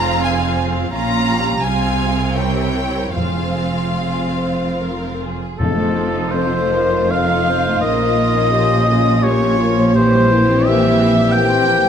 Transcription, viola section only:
Already playing: C4 F4
0.93 C#4 F4
1.64 C4 F4
2.36 C4 E4
3.18 C4 F4
5.59 F3
5.76 A3
5.97 C4
6.15 D#4
6.34 C4
6.52 A3
6.71 F3
6.91 A3
7.11 C4
7.30 D#4
7.49 C4
7.69 A3
7.85 C#3
8.02 F3
8.18 A#3
8.37 C#4
8.55 A#3
8.73 F3
8.91 C#3
9.08 F3
9.27 A#3
9.45 C#4
9.62 A#3
9.80 F3
9.98 E3
10.15 G3
10.33 A#3
10.51 C4
10.67 E3 A#3
10.84 G3
11.01 E3
11.16 G3
11.34 A#3
11.49 C4
11.67 A#3
11.85 G3

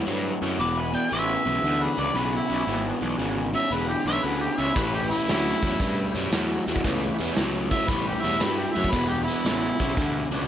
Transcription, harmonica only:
0.60 D6
0.79 B5
0.94 G5
1.13 E5
1.82 B4
1.99 D5
2.16 B4
2.36 E4
3.55 E5
3.73 B4
3.89 G4
4.07 E5
4.23 B4
4.40 G4
4.59 E5
4.75 B4
4.94 G4
5.10 E4
7.71 E5
7.89 B4
8.07 G4
8.22 E5
8.41 B4
8.57 G4
8.73 E5
8.90 B4
9.09 G4
9.24 E4

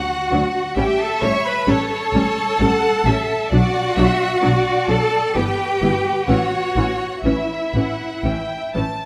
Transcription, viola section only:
0.31 F#3 D4
0.76 G3 C#4
1.22 G3 C#4
1.67 G3 C#4
2.15 G3 C#4
2.61 G3 C#4
3.07 G3 C#4
3.52 F#3 D4
3.97 F#3 D4
4.43 F#3 D4
4.89 F#3 D4
5.36 E3 B3
5.82 E3 B3
6.29 E3 C#4
6.77 E3 C#4
7.25 E3 C#4
7.76 E3 C#4
8.25 E3 C#4
8.75 E3 C#4

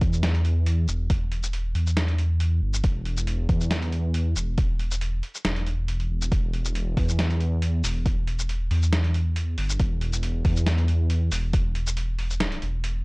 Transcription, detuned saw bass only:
0.01 E2
0.88 E1
1.75 E2
2.62 G1
2.84 E1
3.49 E2
4.36 E1
5.45 E1
6.10 E1
6.32 E1
6.97 E2
7.84 E1
8.71 E2
9.58 G1
9.80 E1
10.45 E2
11.32 E1
12.19 E1
12.62 E1

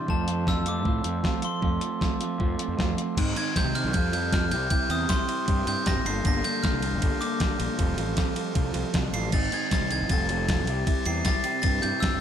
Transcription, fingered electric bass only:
0.09 F2
0.85 A2
1.05 F2
1.63 F2
2.40 F2
2.68 F2
2.79 F2
3.17 G#2
3.65 C3
3.84 C2
3.94 F2
4.51 C2
4.89 E2
5.48 G2
5.67 G2
5.87 G2
5.96 G#1
6.05 G1
6.25 G1
6.73 C2
6.93 G1
7.60 A#1
7.79 F1
7.98 A1
8.56 C2
8.75 C2
8.94 C2
9.13 A1
9.33 G#1
9.81 C2
10.00 G#1
10.10 F1
10.67 C2
11.06 E2
11.64 G2
11.84 G2
12.02 G2
12.13 G2

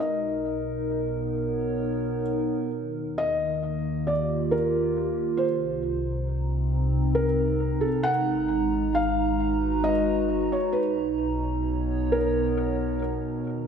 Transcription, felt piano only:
0.00 D#5
3.18 D#5
4.07 D5
4.51 A#4
5.37 C5
7.15 A#4
7.81 A4
8.03 F#5
8.95 F5
9.84 D#5
10.52 C#5
10.72 B4
12.12 A#4

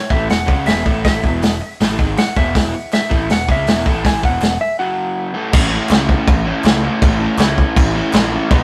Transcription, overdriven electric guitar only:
0.10 A2 E3 A3
0.29 E2 B2
0.46 C#3 G#3 C#4
0.66 E2 B2 E3
0.85 A2 E3 A3
1.23 E2 B2 E3
1.43 E2 B2
1.62 muted overdriven electric guitar stroke
1.81 A2 E3 A3
1.99 G#2 D#3 G#3
2.19 muted overdriven electric guitar stroke
2.38 E2 B2 E3
2.54 E2 B2 E3
2.74 muted overdriven electric guitar stroke
3.10 A2 E3 A3
3.30 E2 B2
3.49 C#3 G#3 C#4
3.67 E2 B2 E3
3.86 A2 E3 A3
4.22 E2 B2 E3
4.41 E2 B2
4.61 muted overdriven electric guitar stroke
4.79 F#2 C#3 F#3
5.34 A2 E3 A3
5.51 A2 E3 A3 C#4 E4
5.71 A3 C#4 E4
5.88 E3 A3 C#4 E4
6.44 A3 C#4 E4
6.64 A2 E3 A3 C#4 E4
6.83 A3 C#4 E4
7.02 A2 E3 A3 C#4 E4
7.20 A3 C#4 E4
7.37 E3 A3 C#4 E4
7.94 A3 C#4 E4
8.13 A2 E3 A3 C#4 E4
8.32 A3 C#4 E4
8.49 B2 D#3 F#3 B3 D#4

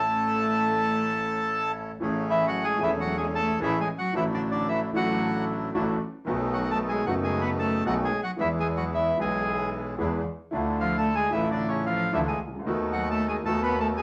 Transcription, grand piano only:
Already playing: A1 A2 E3 A3 C#4 A4
2.00 A1 A2 E3 A3 C#4 G#4
2.78 E1 E2 E3 A3 C#4
2.82 G#4
3.60 A1 A2 E3 A3 C#4 G#4
4.12 A1 A2 E3 A3 D4
4.17 F#4
4.93 A1 A2 E3 A3 D4 F#4
5.75 A1 A2 E3 A3 D4 F#4
6.25 B1 B2 D#3 A3 B3
6.29 F#4
7.05 F#1 F#2 D#3 A3 B3 F#4
7.86 B1 B2 D#3 A3 B3 F#4
8.36 E2 E3 G#3 B3
8.40 G#4
9.17 B1 B2 E3 G#3 B3 G#4
9.98 E2 E3 G#3 B3 G#4
10.51 D2 D3 A3 D4 E4 F4
11.30 A1 A2 A3 D4 E4
11.34 F4
12.12 D2 D3 E3 A3 D4 F4
12.47 C2
12.54 C#2
12.59 D2
12.65 D#2 D#3 A3 B3 F#4
13.44 D#2 D#3 A3 B3
13.48 F#4

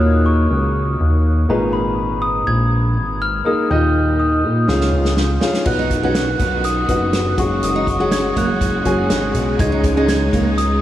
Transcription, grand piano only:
Already playing: A#2 A#3 D#4 F#4 C#5
1.49 G#2 A#2 D#3 D#4 G#4 B4
3.45 A#3 D#4 G#4 A#4
3.70 A#2 A#3 D#4 G4 D#5
4.68 G#2 C#4 F4 G#4 F5
5.40 C#4 F4 G#4 F5
5.65 D#4 F#4 B4 F#5
6.03 D#4 F#4 B4 F#5
6.88 D#4 F#4 B4 F#5
7.38 C#3 C#4 F#4 G#4 F#5
7.99 C#4 F#4 G#4 F#5
8.84 C#4 F#4 G#4 G#5
9.59 G#2 C#4 D#4 G#4 D#5
9.96 C#4 D#4 G#4 D#5

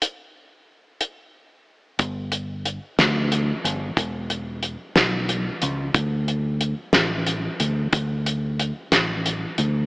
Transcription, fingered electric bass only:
1.99 G1
2.99 D2
3.64 G1
3.97 E1
4.97 B1
5.63 C#2
5.95 D2
6.95 A1
7.60 D2
7.93 D2
8.92 A1
9.58 D2

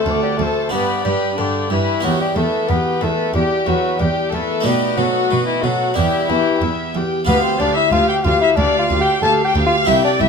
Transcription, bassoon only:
Already playing: A3
0.22 G3
0.37 A3
0.71 B3
1.04 G3
1.37 D3
1.71 E3
2.04 F#3
2.21 G3
2.37 A3
2.70 B3
3.03 A3
3.35 G3
3.68 F#3
4.00 G3
4.33 A3
4.65 G3
4.97 F#3
5.46 E3
5.63 F#3
5.96 G3
6.29 E3
7.27 B3
7.43 C4
7.60 D4
7.76 E4
7.92 F4
8.09 G4
8.24 F4
8.41 E4
8.56 D4
8.78 F4
9.01 G4
9.22 A4
9.44 G4
9.66 F4
9.87 E4
10.04 D4
10.21 E4

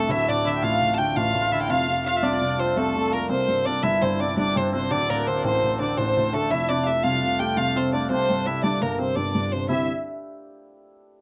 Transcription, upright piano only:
0.09 D1 D2
0.28 A2
0.45 D3
0.63 A1 A2
0.81 A2
0.99 D3
1.16 A1 A2
1.34 A2
1.52 D3
1.69 F1 F2
1.88 C3
2.05 F3
2.22 C2 C3
2.41 C3
2.58 F3
2.77 C2 C3
2.96 C3
3.13 F3
3.29 C2
3.48 G2
3.66 C3
3.83 G1 G2
4.02 G2
4.20 C3
4.37 G1 G2
4.56 G2
4.73 C3
4.91 D1 D2
5.10 A2
5.27 D3
5.44 A1 A2
5.63 A2
5.80 D3
5.97 A1 A2
6.17 A2
6.33 D3
6.50 F1 F2
6.70 C3
6.86 A3
7.04 C2 C3
7.22 C3
7.39 A3
7.57 C2 C3
7.76 C3
7.93 A3
8.10 C2
8.30 G2
8.46 C3
8.64 G1 G2
8.82 G2
8.99 C3
9.16 G1 G2
9.35 G2
9.53 C3
9.69 C2 G2 D3 C4 E4 G4

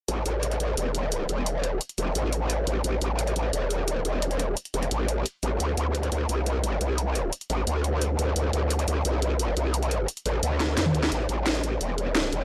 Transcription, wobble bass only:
0.08 A1
0.26 A1
0.60 A1
0.77 E1
1.29 E1
1.98 E1
2.15 A1
2.67 A1
2.84 A1
3.01 A1
3.36 A1
3.53 E1
4.05 E1
4.74 E1
4.91 A1
5.43 A1
5.60 D2
5.77 D2
6.12 D2
6.29 C2
6.81 C2
7.50 A1
7.67 D2
8.19 D2
8.36 D2
8.53 D2
8.88 D2
9.05 C2
9.57 C2
10.26 A1
10.43 D2
10.77 F2
10.95 D2
11.12 A1
11.29 A1
11.64 A1
11.81 E1
12.33 E1

